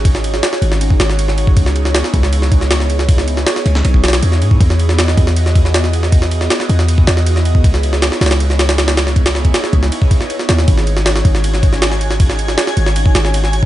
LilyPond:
<<
  \new Staff \with { instrumentName = "Synth texture" } { \time 4/4 \key cis \minor \tempo 4 = 158 r1 | r1 | r1 | r1 |
r1 | r1 | r1 | <gis'' gis'''>1~ |
<gis'' gis'''>1 | }
  \new Staff \with { instrumentName = "Analog synth pad" } { \time 4/4 \key cis \minor <cis' dis' fis' gis' cis''>2 <cis' dis' fis' gis' cis''>2 | <b dis' e' gis' cis''>2 <b dis' e' gis' cis''>2 | <b dis' e' gis' cis''>2 <b dis' e' gis' cis''>2 | <b e' fis' gis' dis''>2 <b e' fis' gis' dis''>2 |
<b e' fis' gis' dis''>2 <b e' fis' gis' dis''>2 | <b dis' e' gis' cis''>2 <b dis' e' gis' cis''>2 | <b dis' e' gis' cis''>2 r2 | <cis' dis' fis' gis' cis''>2 <cis' dis' fis' gis' cis''>2 |
<cis' dis' fis' gis' cis''>2 <cis' dis' fis' gis' cis''>2 | }
  \new Staff \with { instrumentName = "808-style bass" } { \clef bass \time 4/4 \key cis \minor gis,,4 r8 gis,,4 gis,,4. | cis,4 r8 cis,2~ cis,8~ | cis,4 r8 cis,8 b,,4 e,8 gis,8 | e,4. e,2~ e,8~ |
e,4 r8 e,4 e,4. | cis,4 r8 cis,2~ cis,8~ | cis,4 r8 cis,8 r4. dis,8 | gis,,4. gis,,2~ gis,,8~ |
gis,,4 r8 gis,,4 gis,,4. | }
  \new DrumStaff \with { instrumentName = "Drums" } \drummode { \time 4/4 <bd cymr>16 sn16 cymr16 sn16 <cymr sn>16 sn16 cymr16 sn16 cymr16 bd16 <cymr sn>16 sn16 cymr16 sn16 cymr16 bd16 | <bd cymr>16 sn16 cymr16 sn16 <cymr sn>16 sn16 <bd cymr>16 sn16 cymr16 sn16 <bd cymr>16 sn16 <cymr sn>16 sn16 cymr16 sn16 | <bd cymr>16 sn16 cymr16 sn16 <cymr sn>16 sn16 cymr16 sn16 cymr16 bd16 <cymr sn>32 <cymr sn>32 <cymr sn>16 cymr16 sn16 cymr16 bd16 | <bd cymr>16 sn16 cymr16 sn16 <cymr sn>16 sn16 <bd cymr>16 sn16 cymr16 sn16 <bd cymr>16 sn16 <cymr sn>16 sn16 cymr16 sn16 |
<bd cymr>16 sn16 cymr16 sn16 <cymr sn>16 sn16 cymr16 sn16 cymr16 bd16 <cymr sn>16 sn16 cymr16 sn16 cymr16 bd16 | <bd cymr>16 sn16 cymr16 sn16 <cymr sn>16 sn16 <cymr sn>32 <cymr sn>32 <cymr sn>16 cymr16 sn16 <cymr sn>16 <cymr sn>16 <cymr sn>16 <cymr sn>16 <cymr sn>16 sn16 | <bd cymr>16 <cymr sn>16 sn16 <bd cymr>16 <cymr sn>16 sn16 <bd cymr>16 sn16 cymr16 bd16 <bd cymr>16 sn16 cymr16 sn16 <cymr sn>16 sn16 | <bd cymr>16 sn16 cymr16 sn16 <cymr sn>16 sn16 <bd cymr>16 sn16 cymr16 sn16 <bd cymr>16 sn16 <cymr sn>16 sn16 cymr16 sn16 |
<bd cymr>16 sn16 cymr16 sn16 <cymr sn>16 sn16 cymr16 sn16 cymr16 bd16 <cymr sn>16 sn16 cymr16 sn16 cymr8 | }
>>